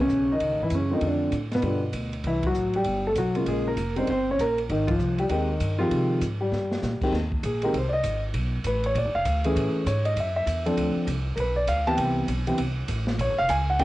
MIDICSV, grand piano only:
0, 0, Header, 1, 2, 480
1, 0, Start_track
1, 0, Tempo, 305344
1, 1619, Time_signature, 4, 2, 24, 8
1, 10734, Tempo, 303030
1, 21844, End_track
2, 0, Start_track
2, 0, Title_t, "Grand piano"
2, 0, Program_c, 0, 0
2, 18, Note_on_c, 0, 61, 87
2, 31, Note_on_c, 0, 49, 60
2, 462, Note_off_c, 0, 49, 0
2, 501, Note_off_c, 0, 61, 0
2, 503, Note_on_c, 0, 63, 85
2, 518, Note_on_c, 0, 51, 55
2, 946, Note_off_c, 0, 51, 0
2, 985, Note_off_c, 0, 63, 0
2, 990, Note_on_c, 0, 64, 76
2, 1004, Note_on_c, 0, 52, 60
2, 1151, Note_off_c, 0, 52, 0
2, 1160, Note_off_c, 0, 64, 0
2, 1175, Note_on_c, 0, 61, 78
2, 1181, Note_on_c, 0, 49, 56
2, 1422, Note_on_c, 0, 65, 59
2, 1430, Note_on_c, 0, 57, 52
2, 1431, Note_on_c, 0, 50, 53
2, 1437, Note_off_c, 0, 61, 0
2, 1439, Note_on_c, 0, 60, 49
2, 1440, Note_off_c, 0, 49, 0
2, 1465, Note_on_c, 0, 63, 81
2, 1485, Note_on_c, 0, 51, 57
2, 1621, Note_off_c, 0, 63, 0
2, 1631, Note_off_c, 0, 51, 0
2, 1654, Note_off_c, 0, 50, 0
2, 1667, Note_on_c, 0, 62, 69
2, 1678, Note_on_c, 0, 50, 60
2, 2056, Note_off_c, 0, 65, 0
2, 2060, Note_off_c, 0, 57, 0
2, 2064, Note_off_c, 0, 60, 0
2, 2092, Note_off_c, 0, 62, 0
2, 2098, Note_off_c, 0, 50, 0
2, 2431, Note_on_c, 0, 47, 49
2, 2434, Note_on_c, 0, 59, 84
2, 2555, Note_off_c, 0, 59, 0
2, 2559, Note_on_c, 0, 50, 53
2, 2567, Note_on_c, 0, 65, 52
2, 2571, Note_on_c, 0, 55, 48
2, 2578, Note_on_c, 0, 59, 47
2, 2840, Note_off_c, 0, 50, 0
2, 2844, Note_off_c, 0, 65, 0
2, 2846, Note_off_c, 0, 55, 0
2, 2850, Note_off_c, 0, 59, 0
2, 3314, Note_off_c, 0, 47, 0
2, 3561, Note_on_c, 0, 52, 56
2, 3567, Note_on_c, 0, 64, 78
2, 3831, Note_off_c, 0, 52, 0
2, 3863, Note_off_c, 0, 64, 0
2, 3875, Note_on_c, 0, 66, 89
2, 3880, Note_on_c, 0, 54, 65
2, 4307, Note_off_c, 0, 66, 0
2, 4309, Note_off_c, 0, 54, 0
2, 4337, Note_on_c, 0, 67, 74
2, 4356, Note_on_c, 0, 55, 64
2, 4777, Note_off_c, 0, 67, 0
2, 4787, Note_off_c, 0, 55, 0
2, 4829, Note_on_c, 0, 69, 80
2, 4858, Note_on_c, 0, 57, 61
2, 4904, Note_off_c, 0, 69, 0
2, 4927, Note_off_c, 0, 57, 0
2, 5000, Note_on_c, 0, 66, 85
2, 5007, Note_on_c, 0, 54, 67
2, 5271, Note_off_c, 0, 66, 0
2, 5275, Note_off_c, 0, 54, 0
2, 5280, Note_on_c, 0, 65, 67
2, 5281, Note_on_c, 0, 56, 49
2, 5288, Note_on_c, 0, 49, 56
2, 5289, Note_on_c, 0, 58, 50
2, 5471, Note_off_c, 0, 56, 0
2, 5473, Note_on_c, 0, 68, 79
2, 5495, Note_on_c, 0, 56, 61
2, 5759, Note_off_c, 0, 56, 0
2, 5763, Note_off_c, 0, 58, 0
2, 5777, Note_off_c, 0, 68, 0
2, 5780, Note_on_c, 0, 70, 90
2, 5786, Note_on_c, 0, 58, 69
2, 5906, Note_off_c, 0, 65, 0
2, 5910, Note_off_c, 0, 49, 0
2, 6213, Note_off_c, 0, 58, 0
2, 6228, Note_on_c, 0, 55, 50
2, 6236, Note_on_c, 0, 49, 49
2, 6237, Note_on_c, 0, 58, 46
2, 6241, Note_on_c, 0, 63, 54
2, 6251, Note_on_c, 0, 72, 74
2, 6258, Note_on_c, 0, 60, 63
2, 6266, Note_off_c, 0, 70, 0
2, 6398, Note_off_c, 0, 55, 0
2, 6402, Note_off_c, 0, 49, 0
2, 6403, Note_off_c, 0, 58, 0
2, 6405, Note_off_c, 0, 63, 0
2, 6416, Note_off_c, 0, 72, 0
2, 6419, Note_off_c, 0, 60, 0
2, 6446, Note_on_c, 0, 72, 88
2, 6459, Note_on_c, 0, 60, 66
2, 6714, Note_off_c, 0, 72, 0
2, 6721, Note_off_c, 0, 60, 0
2, 6777, Note_on_c, 0, 61, 66
2, 6777, Note_on_c, 0, 73, 83
2, 6920, Note_off_c, 0, 61, 0
2, 6928, Note_on_c, 0, 70, 96
2, 6935, Note_off_c, 0, 73, 0
2, 6944, Note_on_c, 0, 58, 70
2, 7195, Note_off_c, 0, 70, 0
2, 7204, Note_off_c, 0, 58, 0
2, 7391, Note_on_c, 0, 63, 74
2, 7413, Note_on_c, 0, 51, 69
2, 7661, Note_on_c, 0, 65, 83
2, 7677, Note_off_c, 0, 51, 0
2, 7691, Note_on_c, 0, 53, 66
2, 7695, Note_off_c, 0, 63, 0
2, 8133, Note_off_c, 0, 53, 0
2, 8165, Note_on_c, 0, 67, 77
2, 8166, Note_off_c, 0, 65, 0
2, 8190, Note_on_c, 0, 55, 64
2, 8243, Note_off_c, 0, 67, 0
2, 8265, Note_off_c, 0, 55, 0
2, 8321, Note_on_c, 0, 63, 75
2, 8341, Note_on_c, 0, 51, 64
2, 8348, Note_on_c, 0, 67, 71
2, 8349, Note_on_c, 0, 60, 58
2, 8350, Note_on_c, 0, 56, 55
2, 8614, Note_off_c, 0, 67, 0
2, 8615, Note_off_c, 0, 56, 0
2, 8615, Note_off_c, 0, 60, 0
2, 9054, Note_off_c, 0, 63, 0
2, 9065, Note_off_c, 0, 51, 0
2, 9094, Note_on_c, 0, 65, 94
2, 9111, Note_on_c, 0, 53, 74
2, 9111, Note_on_c, 0, 56, 58
2, 9113, Note_on_c, 0, 51, 64
2, 9117, Note_on_c, 0, 60, 63
2, 9125, Note_on_c, 0, 67, 75
2, 9720, Note_off_c, 0, 65, 0
2, 9729, Note_off_c, 0, 53, 0
2, 9739, Note_off_c, 0, 56, 0
2, 9740, Note_off_c, 0, 51, 0
2, 9742, Note_off_c, 0, 60, 0
2, 9746, Note_off_c, 0, 67, 0
2, 10068, Note_on_c, 0, 67, 66
2, 10090, Note_on_c, 0, 55, 63
2, 10969, Note_off_c, 0, 67, 0
2, 10980, Note_off_c, 0, 55, 0
2, 11054, Note_on_c, 0, 56, 53
2, 11055, Note_on_c, 0, 60, 56
2, 11059, Note_on_c, 0, 51, 65
2, 11059, Note_on_c, 0, 67, 75
2, 11227, Note_off_c, 0, 56, 0
2, 11227, Note_off_c, 0, 60, 0
2, 11229, Note_off_c, 0, 51, 0
2, 11229, Note_off_c, 0, 67, 0
2, 11721, Note_on_c, 0, 68, 62
2, 12002, Note_off_c, 0, 68, 0
2, 12003, Note_on_c, 0, 56, 63
2, 12014, Note_on_c, 0, 60, 59
2, 12022, Note_on_c, 0, 51, 56
2, 12024, Note_on_c, 0, 67, 70
2, 12030, Note_on_c, 0, 70, 69
2, 12165, Note_off_c, 0, 56, 0
2, 12170, Note_off_c, 0, 60, 0
2, 12174, Note_off_c, 0, 51, 0
2, 12175, Note_off_c, 0, 67, 0
2, 12191, Note_off_c, 0, 70, 0
2, 12215, Note_on_c, 0, 72, 68
2, 12411, Note_on_c, 0, 74, 70
2, 12443, Note_off_c, 0, 74, 0
2, 12481, Note_on_c, 0, 75, 93
2, 12489, Note_off_c, 0, 72, 0
2, 12928, Note_off_c, 0, 75, 0
2, 13645, Note_on_c, 0, 71, 70
2, 13925, Note_off_c, 0, 71, 0
2, 13952, Note_on_c, 0, 73, 79
2, 14114, Note_off_c, 0, 73, 0
2, 14137, Note_on_c, 0, 74, 72
2, 14411, Note_off_c, 0, 74, 0
2, 14412, Note_on_c, 0, 77, 95
2, 14854, Note_off_c, 0, 77, 0
2, 14885, Note_on_c, 0, 57, 66
2, 14887, Note_on_c, 0, 52, 68
2, 14898, Note_on_c, 0, 68, 77
2, 14902, Note_on_c, 0, 61, 58
2, 15509, Note_off_c, 0, 57, 0
2, 15510, Note_off_c, 0, 52, 0
2, 15515, Note_off_c, 0, 68, 0
2, 15517, Note_off_c, 0, 61, 0
2, 15551, Note_on_c, 0, 73, 76
2, 15838, Note_off_c, 0, 73, 0
2, 15843, Note_on_c, 0, 75, 81
2, 16018, Note_off_c, 0, 75, 0
2, 16078, Note_on_c, 0, 76, 72
2, 16310, Note_off_c, 0, 76, 0
2, 16334, Note_on_c, 0, 76, 86
2, 16775, Note_off_c, 0, 76, 0
2, 16802, Note_on_c, 0, 60, 59
2, 16804, Note_on_c, 0, 69, 69
2, 16809, Note_on_c, 0, 53, 68
2, 16809, Note_on_c, 0, 62, 60
2, 17426, Note_off_c, 0, 60, 0
2, 17427, Note_off_c, 0, 69, 0
2, 17429, Note_off_c, 0, 53, 0
2, 17429, Note_off_c, 0, 62, 0
2, 17907, Note_on_c, 0, 70, 49
2, 17942, Note_off_c, 0, 70, 0
2, 17974, Note_on_c, 0, 71, 72
2, 18233, Note_on_c, 0, 74, 83
2, 18248, Note_off_c, 0, 71, 0
2, 18411, Note_off_c, 0, 74, 0
2, 18427, Note_on_c, 0, 77, 89
2, 18714, Note_off_c, 0, 77, 0
2, 18723, Note_on_c, 0, 60, 65
2, 18723, Note_on_c, 0, 81, 107
2, 18724, Note_on_c, 0, 67, 83
2, 18727, Note_on_c, 0, 52, 64
2, 18728, Note_on_c, 0, 59, 60
2, 18873, Note_on_c, 0, 79, 76
2, 18896, Note_off_c, 0, 81, 0
2, 19331, Note_off_c, 0, 79, 0
2, 19345, Note_off_c, 0, 60, 0
2, 19345, Note_off_c, 0, 67, 0
2, 19347, Note_off_c, 0, 52, 0
2, 19347, Note_off_c, 0, 59, 0
2, 19671, Note_on_c, 0, 52, 62
2, 19677, Note_on_c, 0, 67, 64
2, 19680, Note_on_c, 0, 59, 51
2, 19690, Note_on_c, 0, 60, 54
2, 19837, Note_off_c, 0, 52, 0
2, 19840, Note_off_c, 0, 67, 0
2, 19841, Note_off_c, 0, 59, 0
2, 19846, Note_off_c, 0, 60, 0
2, 20839, Note_on_c, 0, 73, 79
2, 21118, Note_off_c, 0, 73, 0
2, 21118, Note_on_c, 0, 77, 108
2, 21293, Note_off_c, 0, 77, 0
2, 21298, Note_on_c, 0, 80, 91
2, 21587, Note_off_c, 0, 80, 0
2, 21614, Note_on_c, 0, 78, 91
2, 21764, Note_on_c, 0, 61, 57
2, 21766, Note_on_c, 0, 51, 58
2, 21769, Note_on_c, 0, 79, 99
2, 21771, Note_on_c, 0, 67, 71
2, 21776, Note_on_c, 0, 58, 54
2, 21780, Note_off_c, 0, 78, 0
2, 21844, Note_off_c, 0, 51, 0
2, 21844, Note_off_c, 0, 58, 0
2, 21844, Note_off_c, 0, 61, 0
2, 21844, Note_off_c, 0, 67, 0
2, 21844, Note_off_c, 0, 79, 0
2, 21844, End_track
0, 0, End_of_file